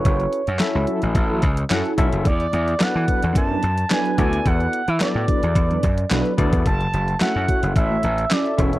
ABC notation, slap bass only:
X:1
M:4/4
L:1/16
Q:1/4=109
K:F#m
V:1 name="Slap bass" clef=bass
F,,,2 z F,, z C,, z A,,, A,,,2 C,,2 F,, z B,,, F,,, | E,,2 E,,2 z E, z E,, F,,2 F,,2 z2 D,,2 | E,,2 z E, z A,, z E,, E,,2 F,,2 B,,, z D,, E,, | F,,,2 F,,,2 z F,, z F,,, A,,,2 A,,,2 z2 E,,,2 |]